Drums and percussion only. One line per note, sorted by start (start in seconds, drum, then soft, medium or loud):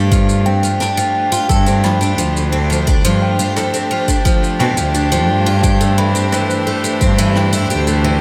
0.12 kick loud
0.12 shaker medium
0.29 shaker soft
0.64 shaker medium
0.81 cross-stick medium
0.81 shaker medium
0.99 shaker soft
1.34 shaker medium
1.50 kick loud
1.50 shaker medium
1.68 shaker medium
1.85 cross-stick medium
2.02 shaker medium
2.19 shaker medium
2.37 shaker soft
2.72 shaker medium
2.88 kick loud
2.88 shaker soft
3.06 shaker soft
3.40 shaker medium
3.56 cross-stick medium
3.56 shaker medium
3.75 shaker soft
4.08 kick medium
4.08 shaker medium
4.26 kick loud
4.26 shaker medium
4.44 shaker soft
4.59 cross-stick medium
4.78 shaker medium
4.95 shaker medium
5.13 shaker soft
5.63 kick loud
5.63 shaker medium
5.82 shaker soft
6.16 shaker medium
6.32 cross-stick medium
6.32 shaker medium
6.50 shaker soft
6.85 shaker medium
7.01 kick loud
7.01 shaker medium
7.19 shaker soft
7.36 cross-stick medium
7.53 shaker medium
7.71 shaker medium
7.88 shaker soft